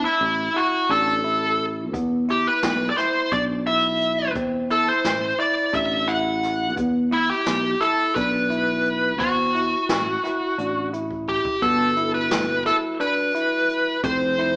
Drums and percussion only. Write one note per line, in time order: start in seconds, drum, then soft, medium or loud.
1.94 kick medium
1.94 closed hi-hat medium
2.28 closed hi-hat soft
2.63 snare loud
2.63 closed hi-hat medium
2.97 snare soft
2.97 closed hi-hat medium
3.32 kick medium
3.32 closed hi-hat medium
3.66 closed hi-hat soft
4.01 closed hi-hat medium
4.35 kick medium
4.35 closed hi-hat medium
4.70 closed hi-hat medium
5.05 snare medium
5.05 closed hi-hat medium
5.39 closed hi-hat medium
5.74 kick medium
5.74 closed hi-hat medium
6.08 closed hi-hat soft
6.43 snare soft
6.43 closed hi-hat medium
6.77 kick medium
6.77 closed hi-hat medium
7.12 closed hi-hat medium
7.46 snare medium
7.46 closed hi-hat medium
7.81 closed hi-hat medium
8.16 kick medium
8.16 closed hi-hat medium
8.51 closed hi-hat soft
8.85 closed hi-hat medium
9.20 kick medium
9.20 closed hi-hat medium
9.55 closed hi-hat soft
9.89 snare loud
9.89 closed hi-hat medium
10.24 snare soft
10.24 closed hi-hat medium
10.59 closed hi-hat medium
10.93 closed hi-hat medium
11.11 kick medium
11.28 kick medium
11.45 kick medium
11.62 kick medium
11.62 closed hi-hat medium
11.96 closed hi-hat medium
12.31 snare loud
12.31 closed hi-hat medium
12.66 snare soft
12.66 closed hi-hat medium
13.00 closed hi-hat medium
13.35 closed hi-hat medium
13.69 closed hi-hat medium
14.03 kick loud
14.03 closed hi-hat medium
14.38 closed hi-hat soft